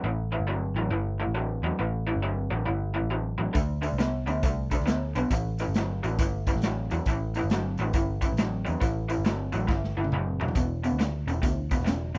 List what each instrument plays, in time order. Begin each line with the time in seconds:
0.04 picked electric bass A1, overdriven electric guitar A2 E3
0.32 overdriven electric guitar A2 E3
0.40 picked electric bass G1
0.47 overdriven electric guitar A2 F#3
0.75 picked electric bass A1, overdriven electric guitar A2 F#3
0.90 picked electric bass G1, overdriven electric guitar A2 E3
1.20 overdriven electric guitar A2 E3
1.27 picked electric bass A1
1.35 overdriven electric guitar A2 F#3
1.63 picked electric bass E2, overdriven electric guitar A2 F#3
1.79 picked electric bass A1, overdriven electric guitar A2 E3
2.07 overdriven electric guitar A2 E3
2.16 picked electric bass G1
2.22 overdriven electric guitar A2 F#3
2.51 picked electric bass A1, overdriven electric guitar A2 F#3
2.66 picked electric bass G1, overdriven electric guitar A2 E3
2.94 overdriven electric guitar A2 E3
3.02 picked electric bass A1
3.10 overdriven electric guitar A2 F#3
3.38 picked electric bass A1, overdriven electric guitar A2 F#3
3.54 picked electric bass D2, overdriven electric guitar D3 A3, kick, closed hi-hat
3.82 overdriven electric guitar D3 A3, closed hi-hat
3.92 picked electric bass C2
3.98 overdriven electric guitar D3 B3, snare, closed hi-hat
4.26 picked electric bass D2, overdriven electric guitar D3 B3, closed hi-hat
4.43 picked electric bass C2, overdriven electric guitar D3 A3, kick, closed hi-hat
4.71 overdriven electric guitar D3 A3, kick, closed hi-hat
4.80 picked electric bass D2, snare
4.86 overdriven electric guitar D3 B3, snare, closed hi-hat
5.15 picked electric bass B1, overdriven electric guitar D3 B3, closed hi-hat
5.31 picked electric bass A1, overdriven electric guitar A2 E3, kick, closed hi-hat
5.58 overdriven electric guitar A2 E3, closed hi-hat
5.68 picked electric bass G1
5.74 overdriven electric guitar A2 F#3, snare, closed hi-hat
6.03 picked electric bass A1, overdriven electric guitar A2 F#3, closed hi-hat
6.19 picked electric bass G1, overdriven electric guitar A2 E3, kick, closed hi-hat
6.47 overdriven electric guitar A2 E3, kick, closed hi-hat
6.56 picked electric bass A1, snare
6.62 overdriven electric guitar A2 F#3, snare, closed hi-hat
6.91 picked electric bass E2, overdriven electric guitar A2 F#3, closed hi-hat
7.06 picked electric bass A1, overdriven electric guitar A2 E3, kick, closed hi-hat
7.34 overdriven electric guitar A2 E3, closed hi-hat
7.44 picked electric bass G1
7.50 overdriven electric guitar A2 F#3, snare, closed hi-hat
7.78 picked electric bass A1, overdriven electric guitar A2 F#3, closed hi-hat
7.93 picked electric bass G1, overdriven electric guitar A2 E3, kick, closed hi-hat
8.21 overdriven electric guitar A2 E3, kick, closed hi-hat
8.32 picked electric bass A1
8.37 overdriven electric guitar A2 F#3, snare, closed hi-hat
8.65 picked electric bass E2, overdriven electric guitar A2 F#3, closed hi-hat
8.81 picked electric bass A1, overdriven electric guitar A2 E3, kick, closed hi-hat
9.09 overdriven electric guitar A2 E3, closed hi-hat
9.18 picked electric bass G1
9.25 overdriven electric guitar A2 F#3, snare, closed hi-hat
9.52 picked electric bass A1, overdriven electric guitar A2 F#3, closed hi-hat
9.67 picked electric bass G1, overdriven electric guitar A2 E3, kick, snare
9.84 snare
9.97 picked electric bass G1, overdriven electric guitar A2 E3
10.04 high tom
10.12 picked electric bass F#1, overdriven electric guitar A2 F#3, mid tom
10.40 picked electric bass E1, overdriven electric guitar A2 F#3, floor tom
10.48 floor tom
10.55 picked electric bass E1, overdriven electric guitar E2 B2, kick, closed hi-hat
10.84 overdriven electric guitar E2 B2, closed hi-hat
10.92 picked electric bass D2
10.99 overdriven electric guitar E2 C#3, snare, closed hi-hat
11.27 picked electric bass E1, overdriven electric guitar E2 C#3, closed hi-hat
11.42 picked electric bass D2, overdriven electric guitar E2 B2, kick, closed hi-hat
11.71 overdriven electric guitar E2 B2, kick, closed hi-hat
11.78 picked electric bass E1, snare
11.85 overdriven electric guitar E2 C#3, snare, closed hi-hat
12.15 picked electric bass A1, overdriven electric guitar E2 C#3, closed hi-hat